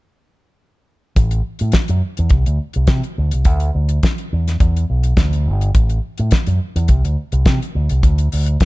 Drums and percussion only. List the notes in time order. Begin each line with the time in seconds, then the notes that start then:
1.16 kick, closed hi-hat
1.31 closed hi-hat
1.59 closed hi-hat
1.72 kick, snare, closed hi-hat
1.88 closed hi-hat
2.17 closed hi-hat
2.29 kick, closed hi-hat
2.46 closed hi-hat
2.73 closed hi-hat
2.87 kick, snare, closed hi-hat
3.04 closed hi-hat
3.31 closed hi-hat
3.45 kick, closed hi-hat
3.60 closed hi-hat
3.89 closed hi-hat
4.03 kick, snare, closed hi-hat
4.18 closed hi-hat
4.48 snare, closed hi-hat
4.60 kick, closed hi-hat
4.76 closed hi-hat
5.03 closed hi-hat
5.17 kick, snare, closed hi-hat
5.33 closed hi-hat
5.61 closed hi-hat
5.75 kick, closed hi-hat
5.89 closed hi-hat
6.18 closed hi-hat
6.31 kick, snare, closed hi-hat
6.46 closed hi-hat
6.76 closed hi-hat
6.88 kick, closed hi-hat
7.05 closed hi-hat
7.32 closed hi-hat
7.46 kick, snare, closed hi-hat
7.62 closed hi-hat
7.89 closed hi-hat
8.03 kick, closed hi-hat
8.18 closed hi-hat
8.32 open hi-hat
8.46 closed hi-hat
8.60 kick, snare, closed hi-hat